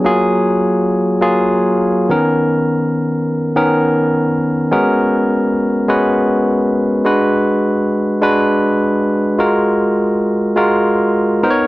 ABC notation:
X:1
M:4/4
L:1/8
Q:1/4=103
K:F#
V:1 name="Tine electric piano"
[F,A,EG]3 z [F,A,EG]3 [D,B,CA]- | [D,B,CA]2 z2 [D,B,CA]3 z | [G,B,CFA]3 z [G,B,CFB]3 z | [G,=DFB]3 z [G,DFB]3 z |
[G,EFA]3 z [G,EFA]3 [B,DA^Bc] |]